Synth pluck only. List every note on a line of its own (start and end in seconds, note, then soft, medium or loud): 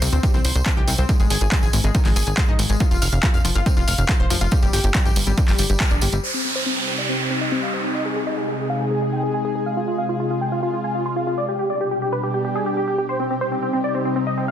0.02 0.05 C3 loud
0.13 0.18 C4 loud
0.23 0.28 G3 medium
0.34 0.39 C4 loud
0.45 0.52 C5 loud
0.56 0.61 C5 medium
0.66 0.71 C4 loud
0.77 0.82 G4 loud
0.88 0.91 C3 loud
0.98 1.03 C4 loud
1.09 1.14 G#3 medium
1.20 1.27 G#3 loud
1.31 1.38 G#4 loud
1.41 1.46 G#4 medium
1.52 1.57 G#3 loud
1.63 1.68 G#4 loud
1.73 1.76 G#2 loud
1.84 1.89 G#3 loud
1.95 2.00 D#3 medium
2.06 2.11 G#3 loud
2.16 2.24 G#4 loud
2.27 2.32 G#4 medium
2.38 2.43 G#3 loud
2.48 2.53 D#4 loud
2.59 2.62 G#2 loud
2.70 2.75 G#3 loud
2.81 2.86 F4 medium
2.91 2.99 F4 loud
3.02 3.09 F5 loud
3.13 3.18 F5 medium
3.23 3.28 F4 loud
3.34 3.39 F5 loud
3.45 3.48 F3 loud
3.56 3.60 F4 loud
3.66 3.71 C4 medium
3.77 3.82 F4 loud
3.88 3.95 F5 loud
3.98 4.03 F5 medium
4.09 4.14 F4 loud
4.20 4.25 C5 loud
4.31 4.33 F3 loud
4.41 4.46 F4 loud
4.52 4.57 G3 medium
4.63 4.70 G3 loud
4.73 4.81 G4 loud
4.84 4.89 G4 medium
4.95 5.00 G3 loud
5.05 5.10 G4 loud
5.16 5.19 G2 loud
5.27 5.32 G3 loud
5.38 5.43 D3 medium
5.48 5.53 G3 loud
5.59 5.62 G3 medium
5.70 5.73 G3 medium
5.81 5.86 G4 medium
5.91 5.96 D4 medium
6.02 6.07 G3 medium
6.13 6.16 G3 medium